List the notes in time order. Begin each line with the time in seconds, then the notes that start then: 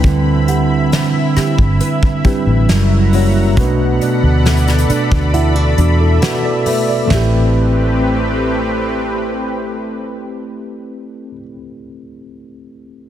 Already playing: D2 G3 C4 D4 E4 G4 B4 E5 G5 B5
0.04 D3, kick, closed hi-hat
0.48 G4 F#5, closed hi-hat
0.92 C4, snare, closed hi-hat
1.36 G4, muted fingered electric bass stroke, cross-stick, closed hi-hat
1.58 G1, kick
1.80 B4, closed hi-hat
2.03 kick
2.24 G3 C4 D4 E4 G4 B4, muted fingered electric bass stroke, kick, closed hi-hat
2.46 A1
2.68 F#1 F#3 G3 C#4 E4 F#4 A#4 F#5 A#5, snare, closed hi-hat
3.12 G3 A#3 C#4 E4 F#4 C#5, open hi-hat
3.56 B1 B2 A3 B3 C#4 F#4 A4 B4 D5 F#5 B5, kick, closed hi-hat
3.64 D4
4.01 D4, closed hi-hat
4.23 D2
4.45 A3, snare, closed hi-hat
4.57 closed hi-hat
4.68 cross-stick, closed hi-hat
4.78 closed hi-hat
4.90 D4, muted fingered electric bass stroke, closed hi-hat
5.12 D2, kick
5.33 E4 E5 F#5, closed hi-hat
5.56 F#4
5.78 E2 B3 D4 F#4, closed hi-hat
6.01 E4 A4
6.22 F#4 B4, snare, closed hi-hat
6.45 A4 D5
6.66 A3 B4 E5, open hi-hat
6.89 A4 D5
7.06 A3 C4
7.10 A1 A3 C4 E4 G4 B4 E5, snare, floor tom
7.14 G4 B4